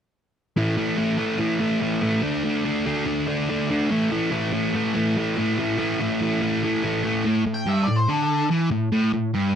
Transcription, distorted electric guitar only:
0.57 0.76 A2 medium
0.57 0.76 E3 medium
0.57 0.77 A3 medium
0.77 0.96 A2 medium
0.77 0.96 E3 medium
0.77 0.98 A3 medium
0.97 1.16 A2 medium
0.97 1.17 E3 medium
0.97 1.17 A3 loud
1.17 1.37 A2 medium
1.17 1.38 E3 medium
1.17 1.39 A3 medium
1.39 1.58 A2 medium
1.39 1.59 E3 medium
1.39 1.60 A3 medium
1.59 1.80 A2 medium
1.59 1.80 E3 medium
1.59 1.81 A3 medium
1.81 2.01 A2 medium
1.81 2.01 E3 medium
1.81 2.02 A3 medium
2.02 2.22 A2 medium
2.02 2.22 E3 medium
2.02 2.23 A3 medium
2.23 2.42 D3 medium
2.23 2.44 A3 medium
2.23 2.44 D4 medium
2.44 2.63 D3 medium
2.44 2.65 A3 medium
2.44 2.64 D4 medium
2.64 2.85 D3 medium
2.64 2.86 A3 medium
2.64 2.85 D4 loud
2.86 3.04 D3 medium
2.86 3.06 A3 medium
2.86 3.05 D4 medium
3.05 3.26 D3 medium
3.05 3.28 A3 medium
3.05 3.27 D4 medium
3.27 3.48 D3 medium
3.27 3.49 A3 medium
3.27 3.49 D4 medium
3.49 3.69 D3 medium
3.49 3.70 A3 medium
3.49 3.70 D4 medium
3.70 3.90 D3 medium
3.70 3.91 A3 medium
3.70 3.90 D4 medium
3.91 4.11 A2 medium
3.91 4.12 E3 medium
3.91 4.12 A3 medium
4.11 4.31 A2 medium
4.11 4.32 E3 medium
4.11 4.32 A3 medium
4.32 4.53 A2 medium
4.32 4.53 E3 medium
4.32 4.53 A3 medium
4.53 4.74 A2 medium
4.53 4.75 E3 medium
4.53 4.75 A3 medium
4.74 4.94 A2 medium
4.74 4.95 E3 medium
4.74 4.95 A3 medium
4.95 5.16 A2 medium
4.95 5.17 E3 medium
4.95 5.17 A3 loud
5.17 5.36 A2 medium
5.17 5.37 E3 medium
5.17 5.37 A3 medium
5.37 5.57 A2 medium
5.37 5.57 E3 medium
5.37 5.58 A3 medium
5.58 5.77 A2 medium
5.58 5.77 E3 medium
5.58 5.78 A3 medium
5.78 5.99 A2 medium
5.78 6.00 E3 medium
5.78 6.00 A3 medium
6.00 6.19 A2 medium
6.00 6.20 E3 medium
6.00 6.21 A3 loud
6.20 6.40 A2 medium
6.20 6.41 E3 medium
6.20 6.41 A3 medium
6.41 6.62 A2 medium
6.41 6.63 E3 medium
6.41 6.63 A3 medium
6.63 6.82 A2 medium
6.63 6.83 E3 medium
6.63 6.83 A3 medium
6.83 7.02 A2 medium
6.83 7.03 E3 medium
6.83 7.03 A3 medium
7.04 7.24 A2 medium
7.04 7.24 E3 medium
7.04 7.24 A3 medium
7.25 7.44 A2 medium
7.46 7.63 A2 medium
7.66 7.87 G2 medium
7.87 8.04 A2 medium
8.08 8.50 D3 loud
8.51 8.71 E3 medium
8.71 8.89 A2 medium
8.92 9.12 A2 medium
9.14 9.31 A2 medium
9.34 9.55 G2 loud

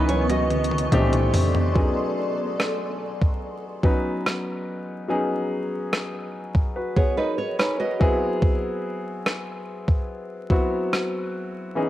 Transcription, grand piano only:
0.00 0.94 E3 medium
0.00 0.94 B3 medium
0.00 0.94 C#4 medium
0.00 0.94 D#4 medium
0.00 0.94 G#4 medium
0.00 0.94 A#4 medium
0.00 0.93 B4 medium
0.92 0.98 D#3 medium
0.92 1.65 A3 medium
0.92 1.65 C4 medium
0.92 1.65 D4 medium
0.92 1.65 G4 loud
0.98 1.68 E3 medium
1.75 3.21 F#3 medium
1.75 3.21 B3 medium
1.75 3.21 C#4 medium
1.75 3.21 D#4 medium
1.75 3.21 G#4 medium
3.83 4.92 F#3 medium
3.83 4.93 B3 medium
3.83 4.93 C#4 medium
3.83 4.93 D#4 medium
3.83 4.93 B4 medium
5.08 6.54 F#3 medium
5.08 6.54 B3 medium
5.08 6.54 C#4 medium
5.08 6.54 D#4 medium
5.08 6.55 G#4 medium
6.76 6.96 F#4 soft
6.76 6.95 B4 medium
6.97 7.17 G#4 medium
6.97 7.16 C#5 medium
7.17 7.57 A#4 medium
7.17 7.57 D#5 medium
7.59 7.79 G#4 medium
7.59 7.79 C#5 medium
7.80 8.20 F#4 medium
7.80 8.19 B4 medium
8.00 9.45 F#3 medium
8.00 9.45 B3 medium
8.00 9.46 C4 medium
8.00 9.46 E4 medium
8.00 9.46 G#4 medium
10.50 11.59 F#3 medium
10.50 11.59 B3 medium
10.50 11.59 C4 medium
10.50 11.60 E4 medium
10.50 11.60 F#4 medium
11.75 11.89 E3 medium
11.75 11.89 B3 medium
11.75 11.89 C#4 medium
11.75 11.89 D#4 medium
11.75 11.89 G#4 medium

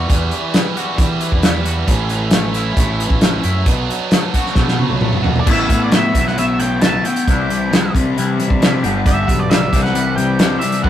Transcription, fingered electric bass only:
0.10 0.30 E2 medium
0.98 1.29 E3 medium
1.32 1.84 E2 medium
1.88 2.74 A1 loud
2.76 3.08 A1 loud
3.10 3.42 A1 medium
3.44 3.65 F#2 medium
3.66 3.87 B1 loud
4.56 4.87 B2 medium
4.91 5.43 B1 medium
5.47 5.67 A1 loud
5.69 6.10 A2 medium
6.14 7.00 B1 medium
7.27 7.90 C2 medium
7.95 8.46 C3 medium
8.50 8.80 C3 medium
8.83 9.24 G1 loud
9.28 9.69 B1 medium
9.73 10.59 C2 medium
10.84 10.89 B1 loud

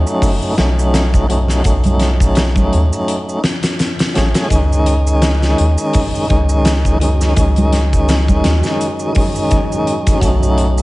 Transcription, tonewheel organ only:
0.00 0.53 F#3 medium
0.00 0.55 A3 medium
0.00 0.56 C#4 medium
0.00 0.57 D#4 loud
0.57 1.25 F#3 medium
0.57 1.26 A3 medium
0.57 1.27 C#4 medium
0.57 1.27 D#4 medium
1.29 1.61 F#3 medium
1.29 1.62 A3 medium
1.29 1.62 C#4 medium
1.29 1.63 D#4 medium
1.63 3.39 F#3 medium
1.63 3.40 A3 medium
1.68 3.41 C#4 medium
1.68 3.42 D#4 medium
4.14 4.47 F#3 medium
4.14 4.47 A3 medium
4.14 4.48 C#4 medium
4.14 4.49 G#4 medium
4.48 6.24 D#3 medium
4.48 6.26 G#3 medium
4.53 6.27 C#4 medium
4.53 6.28 D#4 medium
6.29 6.97 D#3 medium
6.29 6.97 G#3 medium
6.29 6.98 C#4 medium
6.29 6.99 D#4 medium
7.00 7.33 D#3 medium
7.00 7.33 G#3 medium
7.00 7.34 C#4 medium
7.00 7.35 D#4 medium
7.34 9.10 D#3 medium
7.34 9.11 G#3 medium
7.39 9.13 C#4 medium
7.39 9.14 D#4 medium
9.13 10.17 D#3 medium
9.13 10.19 G#3 medium
9.17 10.20 C#4 medium
9.17 10.21 D#4 medium
10.20 10.82 F#3 medium
10.20 10.82 A3 medium
10.25 10.82 C#4 medium
10.25 10.82 D#4 loud

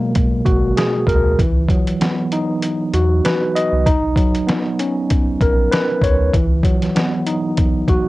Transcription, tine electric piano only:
0.00 1.39 B2 medium
0.00 1.39 F#3 medium
0.00 1.39 G#3 medium
0.00 1.39 A#3 medium
0.00 1.08 A#4 medium
0.45 1.38 F#4 medium
0.77 1.39 G#4 loud
1.08 1.39 A#4 loud
1.38 3.86 E3 medium
1.70 3.86 F#3 medium
2.01 3.86 B3 medium
2.33 3.85 D#4 medium
2.94 3.86 F#4 medium
3.25 3.86 B4 medium
3.55 3.86 D#5 medium
3.86 6.34 D#4 medium
4.16 6.33 F#3 medium
4.47 6.33 B3 medium
4.80 6.34 C#4 medium
5.42 6.34 A#4 medium
5.71 6.33 B4 medium
6.03 6.34 C#5 medium
6.34 8.09 E3 medium
6.64 8.09 F#3 medium
6.96 8.09 B3 medium
7.27 8.09 D#4 medium
7.89 8.09 F#4 medium

